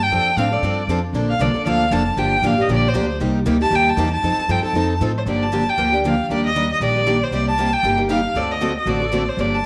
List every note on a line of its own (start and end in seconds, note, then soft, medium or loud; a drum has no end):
0.00 0.10 G2 medium
0.00 0.40 G5 loud
0.11 0.35 F2 medium
0.11 0.29 F3 medium
0.11 0.29 C4 medium
0.11 0.30 D4 medium
0.11 0.30 A4 medium
0.36 0.61 A2 medium
0.36 0.47 F3 medium
0.36 0.47 C4 medium
0.36 0.48 D4 medium
0.36 0.48 A4 medium
0.36 0.54 F5 medium
0.52 0.63 C4 soft
0.52 0.63 D4 soft
0.52 0.62 A4 soft
0.52 0.89 D5 medium
0.62 0.87 G2 medium
0.62 0.81 F3 medium
0.62 0.81 C4 medium
0.62 0.82 D4 medium
0.62 0.82 A4 medium
0.87 1.12 F2 medium
0.87 0.99 F3 medium
0.87 0.99 C4 medium
0.87 0.99 D4 medium
0.87 0.99 A4 loud
1.13 1.38 A#1 medium
1.13 1.32 D3 medium
1.13 1.33 F3 medium
1.13 1.33 A#3 medium
1.13 1.33 D4 medium
1.13 1.33 A4 medium
1.30 1.43 F5 medium
1.39 1.53 C2 medium
1.39 1.50 D3 medium
1.39 1.50 F3 medium
1.39 1.51 A#3 medium
1.39 1.51 D4 medium
1.39 1.51 A4 medium
1.39 1.66 D5 medium
1.54 1.66 A#3 soft
1.54 1.66 D4 soft
1.54 1.65 A4 medium
1.54 muted upright bass stroke soft
1.66 1.90 D2 medium
1.66 1.84 D3 medium
1.66 1.84 F3 medium
1.66 1.84 A#3 medium
1.66 1.84 D4 medium
1.66 1.84 A4 medium
1.66 1.94 F5 loud
1.91 2.16 F1 medium
1.91 2.02 D3 medium
1.91 2.01 F3 medium
1.91 2.02 A#3 medium
1.91 2.02 D4 medium
1.91 2.02 A4 medium
1.91 2.20 A5 medium
2.16 2.41 G1 medium
2.16 2.35 D3 medium
2.16 2.35 F3 medium
2.16 2.35 A#3 medium
2.16 2.36 D4 medium
2.16 2.36 G4 medium
2.16 2.48 G5 medium
2.42 2.67 A1 medium
2.42 2.53 D3 medium
2.42 2.53 F3 medium
2.42 2.53 A#3 loud
2.42 2.54 D4 medium
2.42 2.54 G4 medium
2.46 2.63 F5 medium
2.58 2.68 A#3 soft
2.58 2.68 D4 medium
2.58 2.68 G4 medium
2.58 2.70 D#5 medium
2.68 2.93 A#1 medium
2.68 2.87 D3 medium
2.68 2.87 F3 medium
2.68 2.87 A#3 medium
2.68 2.87 D4 medium
2.68 2.87 G4 medium
2.73 2.90 D5 loud
2.88 3.11 C5 medium
2.94 3.19 D2 medium
2.94 3.05 D3 medium
2.94 3.05 F3 medium
2.94 3.05 A#3 loud
2.94 3.05 D4 medium
2.94 3.05 G4 medium
3.20 3.45 C2 medium
3.20 3.38 C3 medium
3.20 3.39 G3 medium
3.20 3.39 A#3 medium
3.20 3.39 D#4 medium
3.20 3.39 G4 medium
3.46 3.70 D2 medium
3.46 3.56 C3 medium
3.46 3.56 G3 medium
3.46 3.56 A#3 medium
3.46 3.56 D#4 medium
3.46 3.57 G4 medium
3.61 3.70 A#3 soft
3.61 3.71 D#4 soft
3.61 3.71 G4 medium
3.61 3.76 A5 loud
3.71 3.96 D#2 medium
3.71 3.90 C3 medium
3.71 3.90 G3 medium
3.71 3.90 A#3 medium
3.71 3.90 D#4 medium
3.71 3.90 G4 medium
3.75 3.91 G5 loud
3.89 4.13 A5 loud
3.97 4.22 E2 loud
3.97 4.08 C3 medium
3.97 4.08 G3 medium
3.97 4.08 A#3 medium
3.97 4.08 D#4 loud
3.97 4.08 G4 medium
4.14 4.53 A5 loud
4.22 4.36 F2 medium
4.22 4.41 F3 medium
4.22 4.42 C4 medium
4.22 4.42 D#4 medium
4.22 4.42 A4 medium
4.38 muted upright bass stroke soft
4.48 4.62 G2 medium
4.48 4.59 F3 medium
4.48 4.59 C4 medium
4.48 4.59 D#4 medium
4.48 4.60 A4 medium
4.48 4.64 G5 medium
4.63 4.74 C4 soft
4.63 4.75 D#4 medium
4.63 4.74 A4 medium
4.63 4.98 A5 medium
4.63 muted upright bass stroke soft
4.73 4.99 F2 medium
4.73 4.93 F3 medium
4.73 4.93 C4 medium
4.73 4.93 D#4 medium
4.73 4.93 A4 medium
5.00 5.25 A2 medium
5.00 5.11 F3 medium
5.00 5.11 C4 medium
5.00 5.11 D#4 medium
5.00 5.11 A4 loud
5.18 5.22 C5 medium
5.25 5.67 G1 medium
5.25 5.44 D3 medium
5.25 5.45 F3 medium
5.25 5.45 A#3 medium
5.25 5.45 D4 medium
5.25 5.45 G4 medium
5.25 5.45 D5 medium
5.43 5.71 A5 medium
5.52 5.62 D3 medium
5.52 5.62 F3 medium
5.52 5.63 A#3 medium
5.52 5.63 D4 medium
5.52 5.63 G4 medium
5.69 5.94 G5 loud
5.78 6.19 D2 medium
5.78 5.92 D3 medium
5.78 5.92 F3 medium
5.78 5.92 A#3 medium
5.78 5.92 D4 medium
5.78 5.91 G4 medium
5.92 6.04 A#3 soft
5.92 6.04 D4 medium
5.92 6.03 G4 medium
6.05 6.14 D3 medium
6.05 6.14 F3 medium
6.05 6.14 A#3 medium
6.05 6.15 D4 medium
6.05 6.15 G4 medium
6.05 6.29 F5 medium
6.29 6.70 D#2 medium
6.29 6.48 D#3 medium
6.29 6.48 G3 medium
6.29 6.48 A#3 medium
6.29 6.48 D4 medium
6.29 6.48 G4 medium
6.29 6.44 D5 medium
6.46 6.69 D#5 medium
6.56 6.65 D#3 medium
6.56 6.66 G3 medium
6.56 6.66 A#3 medium
6.56 6.66 D4 medium
6.56 6.66 G4 medium
6.72 6.81 D#5 medium
6.80 7.21 A#1 medium
6.80 6.95 D#3 medium
6.80 6.95 G3 medium
6.80 6.95 A#3 medium
6.80 6.95 D4 medium
6.80 6.95 G4 medium
6.80 7.24 D5 medium
6.96 7.06 A#3 soft
6.96 7.06 D4 soft
6.96 7.06 G4 medium
7.06 7.17 D#3 medium
7.06 7.17 G3 medium
7.06 7.17 A#3 medium
7.06 7.17 D4 medium
7.06 7.17 G4 medium
7.23 7.32 C5 medium
7.31 7.73 C2 medium
7.31 7.50 C3 medium
7.31 7.50 G3 medium
7.31 7.51 A#3 medium
7.31 7.51 D#4 medium
7.31 7.51 G4 medium
7.31 7.35 C5 medium
7.31 7.47 D5 medium
7.48 7.74 A5 loud
7.58 7.68 C3 medium
7.58 7.68 G3 medium
7.58 7.68 A#3 medium
7.58 7.69 D#4 medium
7.58 7.69 G4 medium
7.72 7.98 G5 loud
7.83 8.24 G1 medium
7.83 7.98 C3 medium
7.83 7.98 G3 medium
7.83 7.98 A#3 medium
7.83 7.97 D#4 medium
7.83 7.96 G4 medium
7.98 8.08 A#3 soft
7.98 8.09 D#4 medium
7.98 8.09 G4 medium
8.09 8.19 C3 medium
8.09 8.19 G3 medium
8.09 8.19 A#3 medium
8.09 8.20 D#4 medium
8.09 8.20 G4 medium
8.09 8.38 F5 medium
8.34 8.76 D2 medium
8.34 8.53 D3 medium
8.34 8.53 A3 medium
8.34 8.54 C4 medium
8.34 8.54 F#4 medium
8.34 8.54 A4 medium
8.34 8.52 D5 medium
8.51 8.76 D#5 medium
8.61 8.71 D3 medium
8.61 8.71 A3 medium
8.61 8.71 C4 medium
8.61 8.71 F#4 medium
8.61 8.71 A4 medium
8.78 8.90 D#5 medium
8.86 9.27 A1 medium
8.86 9.00 D3 medium
8.86 9.00 A3 medium
8.86 9.01 C4 medium
8.86 9.00 F#4 medium
8.86 8.99 A4 medium
8.86 9.30 D5 medium
9.00 9.11 C4 soft
9.00 9.11 F#4 medium
9.00 9.11 A4 soft
9.12 9.22 D3 medium
9.12 9.22 A3 medium
9.12 9.22 C4 medium
9.12 9.22 F#4 medium
9.12 9.23 A4 medium
9.28 9.41 C5 medium
9.37 9.66 G1 medium
9.37 9.56 D3 medium
9.37 9.56 F3 medium
9.37 9.57 A#3 medium
9.37 9.57 D4 medium
9.37 9.57 G4 medium
9.37 9.55 D5 medium
9.54 9.66 A5 medium